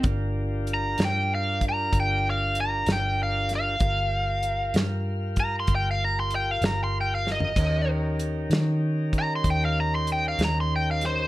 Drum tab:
CC |------------------------|------------------------|x-----------------------|
HH |x---x-x---x-x---x-x---x-|x---x-x---x-x---x-x-----|x---x-x---x-x---x-x---x-|
SD |------o-----------o---o-|------o-----------o---o-|------o-----------o---o-|
FT |------------------------|-----------------------o|------------------------|
BD |o---------o-o-----------|o---------o-o-----------|o---------o-o-----------|